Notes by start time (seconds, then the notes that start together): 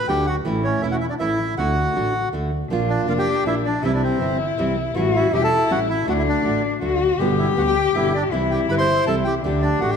0.08 D2 D3 A3 D4 F#4 G4 G5
0.27 F#4 F#5
0.45 A1 E3 A3 C#4 E4
0.64 C#4 C#5
0.82 E1 E3 A3 C#4 E4 E5
0.91 F#4 F#5
1.01 E4 E5
1.10 D4 D5
1.19 A1 E3 A3 C#4 E4 E5
1.57 D2 D3 A3 D4 F#4 F#5
1.95 A1 D3 A3 D4 F#4
2.33 D2 D3 A3 D4 F#4
2.70 A#1 F3 A#3 D4 F4
2.90 D4 D5
3.08 F1 F3 A#3 D4 F4 F5
3.18 G4 G5
3.45 A#1 F3 A#3 D4 E4 F4 E5
3.66 D4 D5
3.82 C2 C3 E3 G3 C4 E4 E5
3.95 D4 D5
4.04 C4 C5
4.20 G1 C3 E3 G3 C4 E4
4.58 C2 C3 E3 G3 C4 E4
4.95 A1 E3 G3 C#4 E4 F#4
5.16 E4 E5
5.32 E1 E3 G3 C#4 E4 G4 G5
5.44 A4 A5
5.69 A1 E3 G3 C#4 E4 F#4 F#5
5.89 E4 E5
6.06 D2 D3 A3 D4 F#4 F#5
6.19 E4 E5
6.28 D4 D5
6.44 A1 D3 A3 D4 F#4
6.81 D2 D3 A3 D4 F#4
7.19 G1 B2 D3 G3 B3 G4
7.39 E4 E5
7.56 D2 B2 D3 G3 B3 F#4 G4 F#5
7.67 G4 G5
7.94 G1 B2 D3 G3 B3 E4 G4 E5
8.15 D4 D5
8.31 C2 C3 E3 G3 C4 E4
8.51 G4 G5
8.69 G1 C3 E3 G3 C4 E4 B4 B5
8.78 C5 C6
9.06 C2 C3 E3 G3 C4 E4 A4 A5
9.24 G4 G5
9.44 D2 D3 A3 D4 G4
9.62 D4 D5
9.81 A1 D3 A3 D4 F#4 G4 F#5
9.90 G4 G5